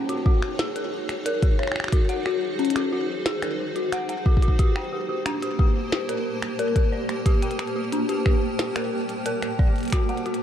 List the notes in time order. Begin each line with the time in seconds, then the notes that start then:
Already playing: D#4 F#4 G#4 C#5
0.09 F#4, closed hi-hat
0.26 F#4, kick
0.42 finger snap
0.59 G#4, snare, closed hi-hat
0.76 A#4, closed hi-hat
1.09 finger snap, closed hi-hat
1.26 A#4, closed hi-hat
1.42 A#4, kick, closed hi-hat
1.59 C#5, finger snap
1.63 finger snap
1.67 finger snap
1.72 finger snap
1.76 finger snap
1.80 finger snap
1.84 finger snap
1.88 finger snap
1.92 F#4 C5, kick, closed hi-hat
2.09 F#5, closed hi-hat
2.26 F#4, finger snap
2.59 C#4, closed hi-hat
2.65 closed hi-hat
2.70 closed hi-hat
2.76 F#4, finger snap, closed hi-hat
2.92 F#4
3.26 G#4, snare, closed hi-hat
3.42 A#4, finger snap, closed hi-hat
3.76 F#4, closed hi-hat
3.92 F#5, finger snap, closed hi-hat
4.09 F#5, closed hi-hat
4.26 F#4, kick
4.37 kick
4.42 F#4, closed hi-hat
4.48 kick
4.59 A#3 G4 A5, kick, closed hi-hat
4.76 G5, finger snap
4.92 G4
5.09 G4
5.26 D4, finger snap, closed hi-hat
5.42 G4, closed hi-hat
5.59 G4, kick
5.92 G4, finger snap, snare
6.09 A#4, closed hi-hat
6.42 finger snap, closed hi-hat
6.59 A#4, closed hi-hat
6.76 A#4, kick, closed hi-hat
6.92 D5
7.09 finger snap, closed hi-hat
7.26 G4 G5, kick, closed hi-hat
7.42 G5, closed hi-hat
7.51 closed hi-hat
7.59 G4, finger snap, closed hi-hat
7.67 closed hi-hat
7.76 G4
7.92 D4, closed hi-hat
8.09 G4, closed hi-hat
8.26 G4, finger snap, kick
8.59 G4, snare, closed hi-hat
8.76 A#4, finger snap, closed hi-hat
9.09 closed hi-hat
9.26 A#4, closed hi-hat
9.42 A#4, finger snap, closed hi-hat
9.59 D5, kick
9.76 closed hi-hat
9.78 closed hi-hat
9.81 closed hi-hat
9.83 closed hi-hat
9.85 closed hi-hat
9.88 closed hi-hat
9.90 D#4 F#4 G#4 C#5, finger snap, kick, closed hi-hat
9.92 F#4, closed hi-hat
10.09 F#5, closed hi-hat
10.17 closed hi-hat
10.26 F#4, closed hi-hat
10.34 closed hi-hat